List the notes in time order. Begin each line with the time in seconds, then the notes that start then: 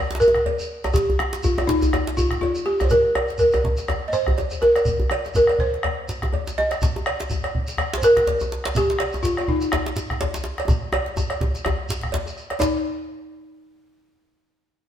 0.11 djembe slap
0.15 djembe slap
0.20 A#4, shekere
0.28 djembe tone
0.35 bombo rim, bombo low, djembe slap
0.46 cowbell, djembe bass
0.59 djembe tone, shekere
0.84 bombo rim, cowbell, djembe slap, djembe tone, shekere
0.93 G4, bombo rim, bombo low, djembe slap, djembe bass, shekere
0.96 djembe slap
1.10 djembe bass
1.19 bombo rim, djembe tone
1.33 djembe slap, shekere
1.43 F4, bombo rim, djembe slap, djembe bass, shekere
1.58 F4, bombo rim, cowbell, djembe slap, djembe tone
1.67 D#4, bombo low, djembe slap
1.82 bombo rim, djembe slap, djembe bass, shekere
1.93 bombo rim, cowbell, djembe slap, djembe tone, djembe bass
2.07 djembe slap
2.17 F4, djembe bass, shekere
2.31 bombo rim, bombo low, djembe slap
2.41 F4, cowbell, djembe bass
2.55 djembe tone, shekere
2.66 G4
2.79 bombo rim, cowbell, djembe slap, djembe bass, shekere
2.84 C5
2.89 A#4, bombo low, djembe tone, djembe bass, shekere
3.05 bombo rim, djembe slap
3.15 bombo rim, cowbell, djembe slap, djembe tone
3.28 bombo rim, djembe slap, shekere
3.38 A#4, djembe slap, djembe bass, shekere
3.52 bombo rim, cowbell, djembe tone, djembe bass, shekere
3.64 bombo low, djembe slap, djembe tone
3.77 bombo rim, djembe slap, shekere
3.88 bombo rim, cowbell, djembe tone, djembe bass
4.02 bombo rim
4.08 D#5
4.12 C5, bombo rim, djembe slap, shekere
4.27 bombo rim, bombo low, djembe bass
4.37 cowbell, djembe tone, djembe bass, shekere
4.50 bombo rim, djembe bass, shekere
4.61 A#4, bombo rim, djembe slap, djembe tone
4.76 bombo rim, cowbell, djembe slap, shekere
4.85 bombo low, djembe slap, djembe bass, shekere
5.00 djembe bass
5.10 bombo rim, cowbell, djembe slap, djembe tone
5.24 djembe slap, shekere
5.34 A#4, bombo rim, djembe slap, djembe tone, djembe bass, shekere
5.47 bombo rim, cowbell, djembe slap, djembe tone
5.59 C5, bombo low
5.73 bombo rim, djembe slap
5.83 bombo rim, cowbell, djembe slap, djembe bass
6.08 djembe slap, shekere
6.22 bombo rim, bombo low, djembe slap, djembe tone
6.33 cowbell, djembe bass
6.46 djembe slap, djembe tone, shekere
6.58 D#5, djembe tone
6.71 bombo rim, cowbell, djembe slap, shekere
6.82 bombo rim, bombo low, djembe slap, djembe bass, shekere
6.96 djembe tone
7.06 bombo rim, cowbell, djembe slap
7.19 djembe slap, shekere
7.30 bombo rim, djembe slap, djembe tone, djembe bass, shekere
7.44 bombo rim, cowbell, djembe slap, djembe tone
7.55 bombo low
7.67 bombo rim, djembe slap, shekere
7.78 bombo rim, cowbell, djembe slap, djembe bass
7.93 djembe slap
7.98 C5
8.02 A#4, djembe slap, shekere
8.16 bombo rim, bombo low, djembe slap
8.27 cowbell, djembe slap, djembe bass
8.40 djembe tone, shekere
8.52 djembe slap
8.64 bombo rim, cowbell, djembe slap, shekere
8.75 G4, bombo rim, bombo low, djembe slap, djembe bass, shekere
8.90 djembe slap
8.99 bombo rim, cowbell, djembe slap
9.12 djembe slap, djembe tone, shekere
9.23 F4, bombo rim, djembe slap, djembe bass, shekere
9.37 F4, bombo rim, cowbell, djembe slap, djembe tone
9.48 D#4, bombo low
9.61 bombo rim, djembe slap, shekere
9.72 bombo rim, cowbell, djembe slap, djembe bass
9.86 djembe slap
9.96 djembe slap, shekere
10.10 bombo rim, bombo low, djembe slap
10.21 cowbell, djembe slap, djembe bass
10.34 djembe slap, djembe tone, shekere
10.44 djembe slap
10.58 bombo rim, cowbell, djembe slap, shekere
10.68 bombo low, djembe tone, djembe bass, shekere
10.82 bombo rim
10.92 bombo rim, cowbell, djembe tone
11.06 djembe slap
11.16 djembe tone, djembe bass, shekere
11.30 bombo rim, cowbell, djembe tone
11.41 bombo rim, bombo low, djembe tone
11.55 djembe slap, shekere
11.65 bombo rim, cowbell, djembe tone, djembe bass
11.79 bombo rim
11.89 djembe slap, shekere
12.01 bombo rim, bombo low, djembe slap
12.12 cowbell, djembe slap, djembe bass
12.26 bombo rim, djembe slap, djembe tone, shekere
12.37 bombo rim, shekere
12.50 bombo rim, cowbell, djembe slap
12.60 D#4, bombo low, cowbell, djembe slap, djembe bass, shekere